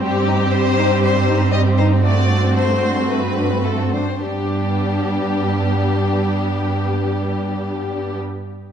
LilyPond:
<<
  \new Staff \with { instrumentName = "Violin section" } { \time 4/4 \key g \major \tempo 4 = 106 g'4 c''4 c''4 ees''8 c''8 | d''4 c''4 b'4 a'8 c''8 | g'1~ | g'1 | }
  \new Staff \with { instrumentName = "Violin section" } { \time 4/4 \key g \major << { g'1 | fis'2.~ fis'8 r8 | g'1~ | g'1 | } \\ { g16 c'16 ees'16 c'16 g16 c'16 ees'16 c'16 g16 c'16 ees'16 c'16 g16 c'16 ees'16 c'16 | a16 c'16 d'16 c'16 a16 c'16 d'16 c'16 a16 c'16 d'16 c'16 a16 c'16 d'16 c'16 | d'1~ | d'1 | } >> }
  \new Staff \with { instrumentName = "Viola section" } { \time 4/4 \key g \major <g c'>1 | <a c'>2.~ <a c'>8 r8 | <g b>1~ | <g b>1 | }
  \new Staff \with { instrumentName = "Cello section" } { \clef bass \time 4/4 \key g \major g,1~ | g,2.~ g,8 r8 | g,1~ | g,1 | }
>>